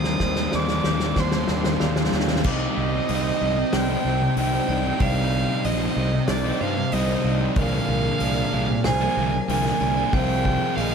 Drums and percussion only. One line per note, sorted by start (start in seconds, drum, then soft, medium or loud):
0.04 snare medium
0.20 kick medium
0.20 snare loud
0.36 snare loud
0.52 snare loud
0.68 snare medium
0.84 snare loud
1.00 snare loud
1.16 kick medium
1.16 snare loud
1.32 snare loud
1.48 snare loud
1.64 snare loud
1.80 snare loud
1.96 snare loud
2.05 snare loud
2.12 snare loud
2.20 snare loud
2.28 snare loud
2.36 snare loud
2.44 kick loud
2.44 crash loud
3.09 open hi-hat medium
3.73 snare loud
3.73 open hi-hat medium
4.37 open hi-hat medium
5.00 kick loud
5.00 open hi-hat medium
5.64 open hi-hat medium
6.28 snare loud
6.28 open hi-hat medium
6.92 open hi-hat medium
7.56 kick loud
7.56 open hi-hat medium
8.20 open hi-hat medium
8.84 snare loud
8.84 open hi-hat medium
9.49 open hi-hat medium
9.66 snare soft
10.13 kick loud
10.13 open hi-hat medium
10.45 kick medium
10.77 open hi-hat medium